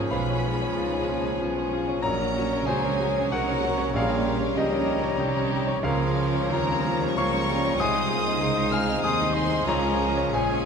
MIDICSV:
0, 0, Header, 1, 12, 480
1, 0, Start_track
1, 0, Tempo, 643087
1, 78, Time_signature, 3, 2, 24, 8
1, 2476, Tempo, 627615
1, 4396, Tempo, 666667
1, 5356, Tempo, 625000
1, 7276, Tempo, 675676
1, 7980, End_track
2, 0, Start_track
2, 0, Title_t, "Flute"
2, 0, Program_c, 0, 73
2, 69, Note_on_c, 0, 80, 53
2, 1508, Note_on_c, 0, 82, 55
2, 1519, Note_off_c, 0, 80, 0
2, 2305, Note_off_c, 0, 82, 0
2, 2476, Note_on_c, 0, 82, 55
2, 2948, Note_off_c, 0, 82, 0
2, 2959, Note_on_c, 0, 82, 54
2, 3262, Note_off_c, 0, 82, 0
2, 3443, Note_on_c, 0, 82, 63
2, 4372, Note_off_c, 0, 82, 0
2, 4392, Note_on_c, 0, 82, 59
2, 4875, Note_off_c, 0, 82, 0
2, 4889, Note_on_c, 0, 82, 58
2, 5348, Note_off_c, 0, 82, 0
2, 5359, Note_on_c, 0, 82, 63
2, 5833, Note_off_c, 0, 82, 0
2, 5836, Note_on_c, 0, 84, 61
2, 6570, Note_off_c, 0, 84, 0
2, 6798, Note_on_c, 0, 84, 60
2, 7271, Note_off_c, 0, 84, 0
2, 7275, Note_on_c, 0, 80, 58
2, 7721, Note_off_c, 0, 80, 0
2, 7754, Note_on_c, 0, 80, 52
2, 7980, Note_off_c, 0, 80, 0
2, 7980, End_track
3, 0, Start_track
3, 0, Title_t, "Violin section"
3, 0, Program_c, 1, 48
3, 0, Note_on_c, 1, 80, 50
3, 75, Note_on_c, 1, 83, 56
3, 78, Note_off_c, 1, 80, 0
3, 1020, Note_off_c, 1, 83, 0
3, 1515, Note_on_c, 1, 82, 62
3, 1962, Note_off_c, 1, 82, 0
3, 1993, Note_on_c, 1, 80, 61
3, 2478, Note_on_c, 1, 78, 64
3, 2479, Note_off_c, 1, 80, 0
3, 2956, Note_on_c, 1, 77, 62
3, 2959, Note_off_c, 1, 78, 0
3, 3423, Note_off_c, 1, 77, 0
3, 3428, Note_on_c, 1, 75, 57
3, 4155, Note_off_c, 1, 75, 0
3, 4402, Note_on_c, 1, 77, 59
3, 4861, Note_off_c, 1, 77, 0
3, 4891, Note_on_c, 1, 82, 68
3, 5357, Note_on_c, 1, 85, 71
3, 5359, Note_off_c, 1, 82, 0
3, 5841, Note_off_c, 1, 85, 0
3, 5845, Note_on_c, 1, 87, 68
3, 6555, Note_off_c, 1, 87, 0
3, 6564, Note_on_c, 1, 89, 64
3, 6796, Note_off_c, 1, 89, 0
3, 6797, Note_on_c, 1, 87, 65
3, 7029, Note_off_c, 1, 87, 0
3, 7030, Note_on_c, 1, 84, 70
3, 7272, Note_off_c, 1, 84, 0
3, 7288, Note_on_c, 1, 82, 62
3, 7755, Note_on_c, 1, 80, 66
3, 7756, Note_off_c, 1, 82, 0
3, 7980, Note_off_c, 1, 80, 0
3, 7980, End_track
4, 0, Start_track
4, 0, Title_t, "Clarinet"
4, 0, Program_c, 2, 71
4, 75, Note_on_c, 2, 73, 48
4, 1484, Note_off_c, 2, 73, 0
4, 1508, Note_on_c, 2, 73, 52
4, 2455, Note_off_c, 2, 73, 0
4, 2490, Note_on_c, 2, 73, 56
4, 2955, Note_off_c, 2, 73, 0
4, 2978, Note_on_c, 2, 73, 54
4, 3272, Note_off_c, 2, 73, 0
4, 3442, Note_on_c, 2, 73, 62
4, 4372, Note_off_c, 2, 73, 0
4, 4397, Note_on_c, 2, 73, 50
4, 4877, Note_off_c, 2, 73, 0
4, 4885, Note_on_c, 2, 73, 63
4, 5343, Note_off_c, 2, 73, 0
4, 5347, Note_on_c, 2, 73, 55
4, 5828, Note_on_c, 2, 72, 52
4, 5840, Note_off_c, 2, 73, 0
4, 6784, Note_off_c, 2, 72, 0
4, 6789, Note_on_c, 2, 72, 54
4, 7267, Note_off_c, 2, 72, 0
4, 7273, Note_on_c, 2, 73, 50
4, 7720, Note_off_c, 2, 73, 0
4, 7752, Note_on_c, 2, 73, 54
4, 7980, Note_off_c, 2, 73, 0
4, 7980, End_track
5, 0, Start_track
5, 0, Title_t, "Cor anglais"
5, 0, Program_c, 3, 69
5, 0, Note_on_c, 3, 68, 49
5, 76, Note_on_c, 3, 71, 56
5, 87, Note_off_c, 3, 68, 0
5, 1040, Note_off_c, 3, 71, 0
5, 1505, Note_on_c, 3, 70, 64
5, 1983, Note_on_c, 3, 68, 66
5, 1995, Note_off_c, 3, 70, 0
5, 2474, Note_on_c, 3, 66, 60
5, 2485, Note_off_c, 3, 68, 0
5, 2957, Note_off_c, 3, 66, 0
5, 2960, Note_on_c, 3, 65, 58
5, 3426, Note_on_c, 3, 63, 61
5, 3437, Note_off_c, 3, 65, 0
5, 4154, Note_off_c, 3, 63, 0
5, 4396, Note_on_c, 3, 65, 64
5, 4883, Note_on_c, 3, 70, 67
5, 4894, Note_off_c, 3, 65, 0
5, 5363, Note_on_c, 3, 73, 75
5, 5374, Note_off_c, 3, 70, 0
5, 5841, Note_off_c, 3, 73, 0
5, 5846, Note_on_c, 3, 75, 73
5, 6557, Note_on_c, 3, 77, 66
5, 6569, Note_off_c, 3, 75, 0
5, 6789, Note_off_c, 3, 77, 0
5, 6794, Note_on_c, 3, 75, 74
5, 7024, Note_on_c, 3, 72, 70
5, 7035, Note_off_c, 3, 75, 0
5, 7274, Note_on_c, 3, 70, 70
5, 7285, Note_off_c, 3, 72, 0
5, 7748, Note_on_c, 3, 68, 65
5, 7758, Note_off_c, 3, 70, 0
5, 7980, Note_off_c, 3, 68, 0
5, 7980, End_track
6, 0, Start_track
6, 0, Title_t, "Grand piano"
6, 0, Program_c, 4, 0
6, 0, Control_c, 4, 64, 127
6, 0, Note_on_c, 4, 37, 48
6, 0, Note_on_c, 4, 61, 43
6, 0, Note_on_c, 4, 65, 39
6, 0, Note_on_c, 4, 68, 47
6, 0, Note_on_c, 4, 70, 39
6, 0, Note_on_c, 4, 72, 41
6, 0, Note_on_c, 4, 73, 45
6, 0, Note_on_c, 4, 77, 52
6, 0, Note_on_c, 4, 78, 55
6, 0, Note_on_c, 4, 80, 59
6, 78, Note_on_c, 4, 83, 64
6, 83, Note_off_c, 4, 77, 0
6, 83, Note_on_c, 4, 77, 54
6, 91, Note_off_c, 4, 73, 0
6, 92, Control_c, 4, 64, 0
6, 96, Note_off_c, 4, 37, 0
6, 96, Note_off_c, 4, 61, 0
6, 96, Note_off_c, 4, 70, 0
6, 96, Note_off_c, 4, 78, 0
6, 97, Note_on_c, 4, 35, 50
6, 98, Note_off_c, 4, 65, 0
6, 98, Note_off_c, 4, 72, 0
6, 98, Note_off_c, 4, 80, 0
6, 99, Note_off_c, 4, 68, 0
6, 199, Control_c, 4, 64, 127
6, 221, Note_on_c, 4, 61, 35
6, 344, Note_on_c, 4, 65, 46
6, 408, Note_off_c, 4, 61, 0
6, 459, Note_on_c, 4, 73, 42
6, 529, Note_off_c, 4, 65, 0
6, 573, Note_on_c, 4, 65, 49
6, 646, Note_off_c, 4, 73, 0
6, 698, Note_on_c, 4, 61, 43
6, 762, Note_off_c, 4, 65, 0
6, 812, Note_on_c, 4, 65, 41
6, 882, Note_off_c, 4, 61, 0
6, 935, Note_on_c, 4, 73, 39
6, 997, Note_off_c, 4, 65, 0
6, 1011, Note_off_c, 4, 83, 0
6, 1014, Note_off_c, 4, 77, 0
6, 1056, Note_on_c, 4, 65, 40
6, 1118, Note_off_c, 4, 73, 0
6, 1170, Note_on_c, 4, 61, 42
6, 1237, Note_off_c, 4, 65, 0
6, 1291, Note_on_c, 4, 65, 47
6, 1354, Note_off_c, 4, 61, 0
6, 1404, Note_on_c, 4, 73, 47
6, 1474, Note_off_c, 4, 65, 0
6, 1494, Note_off_c, 4, 35, 0
6, 1508, Note_off_c, 4, 73, 0
6, 1511, Note_on_c, 4, 82, 73
6, 1519, Note_on_c, 4, 73, 55
6, 1527, Control_c, 4, 64, 0
6, 1532, Note_on_c, 4, 34, 57
6, 1638, Control_c, 4, 64, 127
6, 1651, Note_on_c, 4, 61, 42
6, 1777, Note_on_c, 4, 66, 45
6, 1832, Note_off_c, 4, 61, 0
6, 1875, Note_off_c, 4, 73, 0
6, 1887, Note_on_c, 4, 73, 41
6, 1955, Note_off_c, 4, 66, 0
6, 1959, Note_off_c, 4, 82, 0
6, 1990, Note_on_c, 4, 80, 68
6, 1999, Note_on_c, 4, 72, 51
6, 2006, Note_on_c, 4, 66, 47
6, 2072, Note_off_c, 4, 73, 0
6, 2119, Note_on_c, 4, 61, 50
6, 2193, Note_off_c, 4, 66, 0
6, 2239, Note_on_c, 4, 66, 43
6, 2312, Note_off_c, 4, 61, 0
6, 2374, Note_on_c, 4, 73, 44
6, 2432, Note_off_c, 4, 66, 0
6, 2447, Note_off_c, 4, 80, 0
6, 2451, Note_off_c, 4, 72, 0
6, 2458, Note_off_c, 4, 34, 0
6, 2479, Note_on_c, 4, 78, 75
6, 2481, Note_on_c, 4, 66, 48
6, 2491, Note_on_c, 4, 70, 56
6, 2559, Note_off_c, 4, 73, 0
6, 2603, Note_on_c, 4, 61, 49
6, 2673, Note_off_c, 4, 66, 0
6, 2720, Note_on_c, 4, 66, 52
6, 2793, Note_off_c, 4, 61, 0
6, 2828, Note_on_c, 4, 73, 58
6, 2911, Note_off_c, 4, 66, 0
6, 2929, Note_off_c, 4, 78, 0
6, 2935, Note_off_c, 4, 70, 0
6, 2947, Note_on_c, 4, 34, 65
6, 2953, Note_off_c, 4, 73, 0
6, 2969, Note_on_c, 4, 77, 73
6, 2972, Note_on_c, 4, 68, 59
6, 2973, Control_c, 4, 64, 0
6, 3067, Note_on_c, 4, 61, 44
6, 3113, Control_c, 4, 64, 127
6, 3188, Note_on_c, 4, 67, 48
6, 3262, Note_off_c, 4, 61, 0
6, 3308, Note_on_c, 4, 73, 45
6, 3382, Note_off_c, 4, 67, 0
6, 3409, Note_off_c, 4, 77, 0
6, 3410, Note_off_c, 4, 68, 0
6, 3437, Note_on_c, 4, 67, 54
6, 3439, Note_on_c, 4, 75, 67
6, 3502, Note_off_c, 4, 73, 0
6, 3543, Note_on_c, 4, 61, 57
6, 3627, Note_off_c, 4, 67, 0
6, 3664, Note_on_c, 4, 67, 51
6, 3741, Note_off_c, 4, 61, 0
6, 3791, Note_on_c, 4, 73, 53
6, 3863, Note_off_c, 4, 67, 0
6, 3882, Note_off_c, 4, 34, 0
6, 3915, Note_on_c, 4, 67, 54
6, 3987, Note_off_c, 4, 73, 0
6, 4041, Note_on_c, 4, 61, 56
6, 4109, Note_off_c, 4, 67, 0
6, 4130, Note_off_c, 4, 75, 0
6, 4164, Note_on_c, 4, 67, 48
6, 4231, Note_off_c, 4, 61, 0
6, 4280, Note_on_c, 4, 73, 62
6, 4353, Note_off_c, 4, 67, 0
6, 4398, Note_on_c, 4, 37, 65
6, 4399, Note_off_c, 4, 73, 0
6, 4405, Note_on_c, 4, 77, 78
6, 4412, Control_c, 4, 64, 0
6, 4412, Note_on_c, 4, 70, 57
6, 4513, Note_on_c, 4, 61, 44
6, 4543, Control_c, 4, 64, 127
6, 4636, Note_on_c, 4, 65, 52
6, 4713, Note_off_c, 4, 61, 0
6, 4771, Note_on_c, 4, 73, 49
6, 4838, Note_off_c, 4, 65, 0
6, 4862, Note_off_c, 4, 77, 0
6, 4866, Note_off_c, 4, 70, 0
6, 4873, Note_off_c, 4, 37, 0
6, 4880, Note_on_c, 4, 65, 59
6, 4899, Note_off_c, 4, 73, 0
6, 4899, Note_on_c, 4, 82, 61
6, 4910, Note_on_c, 4, 73, 53
6, 5015, Note_on_c, 4, 61, 54
6, 5075, Note_off_c, 4, 65, 0
6, 5139, Note_on_c, 4, 65, 51
6, 5199, Note_off_c, 4, 61, 0
6, 5248, Note_off_c, 4, 73, 0
6, 5258, Note_on_c, 4, 73, 49
6, 5318, Note_off_c, 4, 65, 0
6, 5334, Note_off_c, 4, 82, 0
6, 5368, Note_on_c, 4, 85, 81
6, 5370, Note_on_c, 4, 65, 52
6, 5373, Note_on_c, 4, 77, 58
6, 5440, Note_off_c, 4, 73, 0
6, 5488, Note_on_c, 4, 61, 55
6, 5559, Note_off_c, 4, 65, 0
6, 5606, Note_on_c, 4, 65, 53
6, 5678, Note_off_c, 4, 61, 0
6, 5731, Note_on_c, 4, 73, 57
6, 5796, Note_off_c, 4, 65, 0
6, 5816, Note_off_c, 4, 85, 0
6, 5818, Note_off_c, 4, 77, 0
6, 5845, Note_on_c, 4, 87, 82
6, 5846, Note_off_c, 4, 73, 0
6, 5851, Note_on_c, 4, 36, 59
6, 5852, Note_on_c, 4, 80, 65
6, 5856, Control_c, 4, 64, 0
6, 5961, Note_on_c, 4, 63, 45
6, 5976, Control_c, 4, 64, 127
6, 6080, Note_on_c, 4, 68, 48
6, 6151, Note_off_c, 4, 63, 0
6, 6205, Note_on_c, 4, 75, 48
6, 6270, Note_off_c, 4, 68, 0
6, 6308, Note_off_c, 4, 36, 0
6, 6318, Note_on_c, 4, 68, 55
6, 6392, Note_off_c, 4, 75, 0
6, 6439, Note_on_c, 4, 63, 50
6, 6507, Note_off_c, 4, 68, 0
6, 6525, Note_off_c, 4, 87, 0
6, 6528, Note_off_c, 4, 80, 0
6, 6549, Note_on_c, 4, 89, 81
6, 6562, Note_on_c, 4, 68, 50
6, 6565, Note_on_c, 4, 80, 62
6, 6626, Note_off_c, 4, 63, 0
6, 6682, Note_on_c, 4, 75, 47
6, 6747, Note_off_c, 4, 68, 0
6, 6772, Note_off_c, 4, 89, 0
6, 6780, Note_off_c, 4, 80, 0
6, 6799, Note_on_c, 4, 87, 74
6, 6804, Note_on_c, 4, 68, 54
6, 6804, Note_on_c, 4, 80, 56
6, 6867, Note_off_c, 4, 75, 0
6, 6931, Note_on_c, 4, 63, 51
6, 6989, Note_off_c, 4, 68, 0
6, 7018, Note_off_c, 4, 87, 0
6, 7022, Note_off_c, 4, 80, 0
6, 7039, Note_on_c, 4, 84, 63
6, 7043, Note_on_c, 4, 68, 48
6, 7049, Note_on_c, 4, 75, 51
6, 7115, Note_off_c, 4, 63, 0
6, 7154, Note_off_c, 4, 75, 0
6, 7165, Note_on_c, 4, 75, 50
6, 7233, Note_off_c, 4, 68, 0
6, 7264, Note_off_c, 4, 84, 0
6, 7283, Note_off_c, 4, 75, 0
6, 7287, Note_on_c, 4, 82, 75
6, 7290, Control_c, 4, 64, 0
6, 7293, Note_on_c, 4, 37, 58
6, 7294, Note_on_c, 4, 73, 63
6, 7402, Control_c, 4, 64, 127
6, 7409, Note_on_c, 4, 61, 49
6, 7524, Note_on_c, 4, 68, 47
6, 7590, Note_off_c, 4, 61, 0
6, 7629, Note_off_c, 4, 73, 0
6, 7640, Note_on_c, 4, 73, 50
6, 7709, Note_off_c, 4, 68, 0
6, 7727, Note_off_c, 4, 82, 0
6, 7745, Note_off_c, 4, 37, 0
6, 7759, Note_off_c, 4, 73, 0
6, 7760, Note_on_c, 4, 80, 67
6, 7762, Note_on_c, 4, 68, 54
6, 7770, Note_on_c, 4, 73, 48
6, 7884, Note_on_c, 4, 61, 45
6, 7954, Note_off_c, 4, 68, 0
6, 7980, Note_off_c, 4, 61, 0
6, 7980, Note_off_c, 4, 73, 0
6, 7980, Note_off_c, 4, 80, 0
6, 7980, End_track
7, 0, Start_track
7, 0, Title_t, "Violin section"
7, 0, Program_c, 5, 48
7, 0, Note_on_c, 5, 60, 46
7, 66, Note_on_c, 5, 68, 42
7, 67, Note_on_c, 5, 59, 42
7, 75, Note_off_c, 5, 60, 0
7, 552, Note_off_c, 5, 59, 0
7, 552, Note_off_c, 5, 68, 0
7, 560, Note_on_c, 5, 63, 42
7, 561, Note_on_c, 5, 68, 44
7, 1035, Note_on_c, 5, 61, 51
7, 1038, Note_off_c, 5, 63, 0
7, 1492, Note_off_c, 5, 68, 0
7, 1496, Note_off_c, 5, 61, 0
7, 1502, Note_on_c, 5, 70, 49
7, 1505, Note_on_c, 5, 61, 51
7, 1976, Note_off_c, 5, 61, 0
7, 1986, Note_on_c, 5, 58, 48
7, 2459, Note_off_c, 5, 70, 0
7, 2468, Note_on_c, 5, 70, 58
7, 2469, Note_on_c, 5, 63, 56
7, 2475, Note_off_c, 5, 58, 0
7, 2715, Note_off_c, 5, 63, 0
7, 2716, Note_on_c, 5, 61, 51
7, 2944, Note_off_c, 5, 70, 0
7, 2957, Note_off_c, 5, 61, 0
7, 2966, Note_on_c, 5, 61, 53
7, 2971, Note_on_c, 5, 70, 53
7, 3428, Note_off_c, 5, 61, 0
7, 3444, Note_on_c, 5, 58, 50
7, 3904, Note_off_c, 5, 70, 0
7, 3916, Note_on_c, 5, 67, 55
7, 3922, Note_off_c, 5, 58, 0
7, 3922, Note_on_c, 5, 60, 61
7, 4395, Note_on_c, 5, 61, 52
7, 4398, Note_off_c, 5, 67, 0
7, 4401, Note_off_c, 5, 60, 0
7, 4401, Note_on_c, 5, 70, 58
7, 4857, Note_off_c, 5, 61, 0
7, 4887, Note_on_c, 5, 58, 51
7, 5330, Note_off_c, 5, 70, 0
7, 5353, Note_off_c, 5, 58, 0
7, 5360, Note_on_c, 5, 70, 60
7, 5362, Note_on_c, 5, 58, 66
7, 5598, Note_on_c, 5, 65, 56
7, 5599, Note_off_c, 5, 58, 0
7, 5833, Note_off_c, 5, 70, 0
7, 5833, Note_on_c, 5, 68, 53
7, 6313, Note_off_c, 5, 68, 0
7, 6327, Note_on_c, 5, 70, 52
7, 6556, Note_on_c, 5, 68, 58
7, 6558, Note_off_c, 5, 70, 0
7, 6776, Note_off_c, 5, 68, 0
7, 6785, Note_on_c, 5, 68, 60
7, 6789, Note_off_c, 5, 65, 0
7, 6792, Note_on_c, 5, 63, 61
7, 7272, Note_on_c, 5, 65, 55
7, 7278, Note_off_c, 5, 63, 0
7, 7730, Note_off_c, 5, 68, 0
7, 7749, Note_off_c, 5, 65, 0
7, 7750, Note_on_c, 5, 61, 52
7, 7753, Note_on_c, 5, 68, 45
7, 7980, Note_off_c, 5, 61, 0
7, 7980, Note_off_c, 5, 68, 0
7, 7980, End_track
8, 0, Start_track
8, 0, Title_t, "French horn section"
8, 0, Program_c, 6, 60
8, 0, Note_on_c, 6, 53, 44
8, 0, Note_on_c, 6, 61, 44
8, 1487, Note_off_c, 6, 61, 0
8, 1489, Note_off_c, 6, 53, 0
8, 1508, Note_on_c, 6, 61, 52
8, 1511, Note_on_c, 6, 54, 51
8, 2927, Note_off_c, 6, 54, 0
8, 2965, Note_on_c, 6, 55, 55
8, 4264, Note_off_c, 6, 55, 0
8, 4264, Note_off_c, 6, 61, 0
8, 4394, Note_on_c, 6, 61, 61
8, 4402, Note_on_c, 6, 53, 56
8, 5809, Note_off_c, 6, 61, 0
8, 5813, Note_off_c, 6, 53, 0
8, 5838, Note_on_c, 6, 63, 61
8, 5839, Note_on_c, 6, 56, 56
8, 7247, Note_off_c, 6, 63, 0
8, 7282, Note_on_c, 6, 65, 54
8, 7980, Note_off_c, 6, 56, 0
8, 7980, Note_off_c, 6, 65, 0
8, 7980, End_track
9, 0, Start_track
9, 0, Title_t, "Viola section"
9, 0, Program_c, 7, 48
9, 0, Note_on_c, 7, 58, 40
9, 68, Note_on_c, 7, 61, 50
9, 71, Note_on_c, 7, 56, 47
9, 79, Note_off_c, 7, 58, 0
9, 552, Note_off_c, 7, 61, 0
9, 556, Note_on_c, 7, 59, 45
9, 789, Note_on_c, 7, 58, 51
9, 800, Note_off_c, 7, 59, 0
9, 1018, Note_off_c, 7, 56, 0
9, 1025, Note_on_c, 7, 59, 44
9, 1027, Note_on_c, 7, 56, 41
9, 1033, Note_off_c, 7, 58, 0
9, 1266, Note_on_c, 7, 61, 51
9, 1269, Note_off_c, 7, 59, 0
9, 1498, Note_off_c, 7, 56, 0
9, 1498, Note_off_c, 7, 61, 0
9, 1507, Note_on_c, 7, 54, 55
9, 1507, Note_on_c, 7, 61, 53
9, 1731, Note_off_c, 7, 54, 0
9, 1740, Note_on_c, 7, 54, 49
9, 1978, Note_on_c, 7, 58, 50
9, 1980, Note_off_c, 7, 54, 0
9, 2220, Note_on_c, 7, 56, 49
9, 2229, Note_off_c, 7, 58, 0
9, 2454, Note_off_c, 7, 61, 0
9, 2466, Note_on_c, 7, 58, 48
9, 2941, Note_off_c, 7, 58, 0
9, 2949, Note_on_c, 7, 55, 57
9, 2950, Note_on_c, 7, 58, 55
9, 2951, Note_off_c, 7, 56, 0
9, 3420, Note_off_c, 7, 58, 0
9, 3430, Note_off_c, 7, 55, 0
9, 3431, Note_on_c, 7, 58, 58
9, 3434, Note_on_c, 7, 53, 52
9, 3905, Note_off_c, 7, 58, 0
9, 3908, Note_on_c, 7, 63, 47
9, 3911, Note_on_c, 7, 51, 49
9, 3917, Note_off_c, 7, 53, 0
9, 4391, Note_on_c, 7, 53, 57
9, 4392, Note_on_c, 7, 58, 60
9, 4394, Note_off_c, 7, 63, 0
9, 4395, Note_off_c, 7, 51, 0
9, 4619, Note_off_c, 7, 58, 0
9, 4629, Note_on_c, 7, 61, 54
9, 4855, Note_off_c, 7, 53, 0
9, 4877, Note_on_c, 7, 55, 63
9, 4878, Note_off_c, 7, 61, 0
9, 4879, Note_on_c, 7, 60, 60
9, 5110, Note_on_c, 7, 58, 59
9, 5122, Note_off_c, 7, 60, 0
9, 5337, Note_off_c, 7, 58, 0
9, 5346, Note_on_c, 7, 58, 56
9, 5825, Note_off_c, 7, 58, 0
9, 5830, Note_on_c, 7, 56, 57
9, 5830, Note_on_c, 7, 60, 52
9, 5836, Note_off_c, 7, 55, 0
9, 6074, Note_off_c, 7, 56, 0
9, 6081, Note_on_c, 7, 58, 54
9, 6303, Note_off_c, 7, 60, 0
9, 6311, Note_on_c, 7, 56, 53
9, 6312, Note_on_c, 7, 60, 54
9, 6318, Note_off_c, 7, 58, 0
9, 6785, Note_on_c, 7, 55, 46
9, 6787, Note_off_c, 7, 56, 0
9, 7256, Note_off_c, 7, 60, 0
9, 7274, Note_off_c, 7, 55, 0
9, 7278, Note_on_c, 7, 53, 58
9, 7278, Note_on_c, 7, 61, 60
9, 7499, Note_off_c, 7, 61, 0
9, 7508, Note_on_c, 7, 61, 56
9, 7739, Note_off_c, 7, 53, 0
9, 7747, Note_on_c, 7, 53, 47
9, 7980, Note_off_c, 7, 53, 0
9, 7980, Note_off_c, 7, 61, 0
9, 7980, End_track
10, 0, Start_track
10, 0, Title_t, "Bassoon"
10, 0, Program_c, 8, 70
10, 85, Note_on_c, 8, 53, 49
10, 1489, Note_off_c, 8, 53, 0
10, 1512, Note_on_c, 8, 54, 49
10, 2457, Note_off_c, 8, 54, 0
10, 2482, Note_on_c, 8, 54, 56
10, 2956, Note_on_c, 8, 55, 52
10, 2968, Note_off_c, 8, 54, 0
10, 3267, Note_off_c, 8, 55, 0
10, 3433, Note_on_c, 8, 55, 59
10, 4367, Note_off_c, 8, 55, 0
10, 4408, Note_on_c, 8, 53, 59
10, 4883, Note_off_c, 8, 53, 0
10, 4898, Note_on_c, 8, 53, 57
10, 5353, Note_off_c, 8, 53, 0
10, 5366, Note_on_c, 8, 53, 57
10, 5612, Note_on_c, 8, 55, 53
10, 5623, Note_off_c, 8, 53, 0
10, 5859, Note_on_c, 8, 56, 56
10, 5871, Note_off_c, 8, 55, 0
10, 6799, Note_off_c, 8, 56, 0
10, 6805, Note_on_c, 8, 56, 53
10, 7275, Note_off_c, 8, 56, 0
10, 7280, Note_on_c, 8, 53, 56
10, 7724, Note_off_c, 8, 53, 0
10, 7751, Note_on_c, 8, 53, 45
10, 7980, Note_off_c, 8, 53, 0
10, 7980, End_track
11, 0, Start_track
11, 0, Title_t, "Cello section"
11, 0, Program_c, 10, 48
11, 77, Note_on_c, 10, 47, 51
11, 557, Note_off_c, 10, 47, 0
11, 561, Note_on_c, 10, 49, 43
11, 1029, Note_off_c, 10, 49, 0
11, 1042, Note_on_c, 10, 47, 45
11, 1512, Note_on_c, 10, 46, 50
11, 1515, Note_off_c, 10, 47, 0
11, 1980, Note_off_c, 10, 46, 0
11, 1992, Note_on_c, 10, 49, 49
11, 2473, Note_on_c, 10, 48, 53
11, 2478, Note_off_c, 10, 49, 0
11, 2946, Note_off_c, 10, 48, 0
11, 2958, Note_on_c, 10, 46, 62
11, 3434, Note_off_c, 10, 46, 0
11, 3440, Note_on_c, 10, 49, 53
11, 3910, Note_off_c, 10, 49, 0
11, 3916, Note_on_c, 10, 48, 48
11, 4398, Note_off_c, 10, 48, 0
11, 4402, Note_on_c, 10, 49, 57
11, 4861, Note_off_c, 10, 49, 0
11, 4891, Note_on_c, 10, 51, 53
11, 5349, Note_off_c, 10, 51, 0
11, 5363, Note_on_c, 10, 49, 49
11, 5844, Note_off_c, 10, 49, 0
11, 5848, Note_on_c, 10, 48, 58
11, 6311, Note_off_c, 10, 48, 0
11, 6318, Note_on_c, 10, 49, 53
11, 6781, Note_off_c, 10, 49, 0
11, 6790, Note_on_c, 10, 51, 52
11, 7267, Note_off_c, 10, 51, 0
11, 7284, Note_on_c, 10, 49, 54
11, 7745, Note_off_c, 10, 49, 0
11, 7758, Note_on_c, 10, 46, 48
11, 7980, Note_off_c, 10, 46, 0
11, 7980, End_track
12, 0, Start_track
12, 0, Title_t, "Double bass section"
12, 0, Program_c, 11, 48
12, 81, Note_on_c, 11, 35, 44
12, 559, Note_off_c, 11, 35, 0
12, 568, Note_on_c, 11, 37, 48
12, 1032, Note_off_c, 11, 37, 0
12, 1045, Note_on_c, 11, 35, 49
12, 1509, Note_on_c, 11, 34, 56
12, 1516, Note_off_c, 11, 35, 0
12, 1979, Note_off_c, 11, 34, 0
12, 1983, Note_on_c, 11, 37, 55
12, 2474, Note_off_c, 11, 37, 0
12, 2478, Note_on_c, 11, 36, 55
12, 2949, Note_off_c, 11, 36, 0
12, 2962, Note_on_c, 11, 34, 57
12, 3434, Note_on_c, 11, 37, 58
12, 3436, Note_off_c, 11, 34, 0
12, 3907, Note_off_c, 11, 37, 0
12, 3918, Note_on_c, 11, 36, 59
12, 4399, Note_off_c, 11, 36, 0
12, 4405, Note_on_c, 11, 37, 58
12, 4862, Note_off_c, 11, 37, 0
12, 4884, Note_on_c, 11, 39, 54
12, 5346, Note_off_c, 11, 39, 0
12, 5352, Note_on_c, 11, 37, 61
12, 5834, Note_on_c, 11, 36, 61
12, 5838, Note_off_c, 11, 37, 0
12, 6304, Note_off_c, 11, 36, 0
12, 6311, Note_on_c, 11, 37, 51
12, 6778, Note_off_c, 11, 37, 0
12, 6787, Note_on_c, 11, 39, 58
12, 7266, Note_off_c, 11, 39, 0
12, 7278, Note_on_c, 11, 37, 57
12, 7742, Note_off_c, 11, 37, 0
12, 7749, Note_on_c, 11, 34, 49
12, 7980, Note_off_c, 11, 34, 0
12, 7980, End_track
0, 0, End_of_file